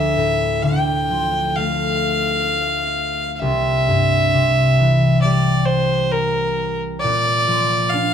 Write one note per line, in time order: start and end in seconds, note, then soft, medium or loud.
0.00 3.47 D2 medium
0.00 0.64 E5 medium
0.16 0.70 A2 soft
0.63 3.47 D3 soft
0.63 1.58 G5 medium
1.10 3.47 F3 soft
1.56 4.90 A3 soft
1.56 3.35 F5 medium
3.35 5.21 E5 loud
3.35 3.41 F5 medium
3.42 7.09 C2 medium
3.88 4.39 G2 soft
4.34 7.09 C3 medium
4.79 7.09 E3 soft
5.21 7.09 G3 medium
5.21 5.67 D5 medium
5.66 6.13 C5 medium
6.11 6.80 A#4 medium
7.00 7.91 D5 loud
7.04 8.14 A#2 medium
7.47 8.14 F3 soft
7.89 8.14 F5 loud
7.94 8.14 D4 medium